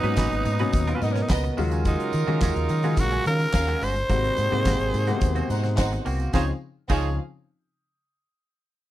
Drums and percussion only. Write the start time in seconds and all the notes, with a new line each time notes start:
0.04 closed hi-hat
0.17 kick, snare, clap, tambourine
0.32 closed hi-hat
0.45 closed hi-hat, tambourine
0.59 closed hi-hat
0.73 kick, closed hi-hat, tambourine
0.87 closed hi-hat, tambourine
1.02 closed hi-hat, tambourine
1.15 snare, closed hi-hat, tambourine
1.30 kick, snare, clap, tambourine
1.44 closed hi-hat
1.58 open hi-hat, tambourine
1.71 closed hi-hat, tambourine
1.85 kick, closed hi-hat, tambourine
2.00 closed hi-hat
2.13 closed hi-hat, tambourine
2.27 closed hi-hat
2.41 kick, snare, clap, tambourine
2.56 closed hi-hat
2.69 closed hi-hat, tambourine
2.83 closed hi-hat, tambourine
2.97 kick, closed hi-hat, tambourine
3.11 closed hi-hat, tambourine
3.26 closed hi-hat, tambourine
3.39 closed hi-hat, tambourine
3.54 kick, snare, clap, tambourine
3.68 closed hi-hat
3.81 open hi-hat, tambourine
3.95 closed hi-hat, tambourine
4.09 kick, closed hi-hat, tambourine
4.24 closed hi-hat
4.37 closed hi-hat, tambourine
4.52 closed hi-hat
4.65 kick, snare, clap, tambourine
4.81 closed hi-hat
4.94 closed hi-hat, tambourine
5.07 closed hi-hat, tambourine
5.21 kick, closed hi-hat, tambourine
5.36 closed hi-hat, tambourine
5.50 closed hi-hat, tambourine
5.64 snare, closed hi-hat, tambourine
5.78 kick, snare, clap, tambourine
5.93 closed hi-hat
6.06 open hi-hat, tambourine
6.20 closed hi-hat, tambourine
6.33 kick, snare, tambourine
6.89 kick, crash, tambourine